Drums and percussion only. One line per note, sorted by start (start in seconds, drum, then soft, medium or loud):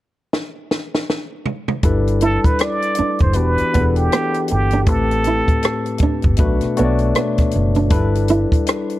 0.33 snare medium
0.71 snare medium
0.95 snare medium
1.10 snare medium
1.46 mid tom medium
1.68 mid tom medium
1.83 kick medium
1.83 closed hi-hat medium
2.07 closed hi-hat soft
2.21 closed hi-hat medium
2.44 kick medium
2.44 closed hi-hat soft
2.59 cross-stick loud
2.59 closed hi-hat medium
2.82 closed hi-hat soft
2.95 closed hi-hat medium
3.19 kick medium
3.19 closed hi-hat soft
3.33 closed hi-hat medium
3.58 closed hi-hat soft
3.74 kick medium
3.74 closed hi-hat medium
3.96 closed hi-hat soft
4.12 cross-stick medium
4.12 closed hi-hat medium
4.34 closed hi-hat soft
4.48 closed hi-hat medium
4.71 closed hi-hat soft
4.86 kick loud
4.86 closed hi-hat medium
5.11 closed hi-hat soft
5.24 closed hi-hat medium
5.48 kick medium
5.48 closed hi-hat soft
5.63 cross-stick loud
5.63 closed hi-hat medium
5.86 closed hi-hat soft
5.98 kick medium
5.98 closed hi-hat medium
6.22 kick medium
6.22 closed hi-hat soft
6.37 kick medium
6.37 closed hi-hat medium
6.61 cross-stick soft
6.61 closed hi-hat soft
6.77 closed hi-hat medium
6.98 closed hi-hat soft
7.15 cross-stick medium
7.15 closed hi-hat medium
7.38 kick medium
7.38 cross-stick soft
7.38 closed hi-hat soft
7.51 closed hi-hat medium
7.75 closed hi-hat soft
7.90 kick medium
7.90 closed hi-hat medium
8.15 closed hi-hat soft
8.28 closed hi-hat medium
8.52 kick medium
8.52 closed hi-hat soft
8.67 cross-stick loud
8.67 closed hi-hat medium
8.90 closed hi-hat soft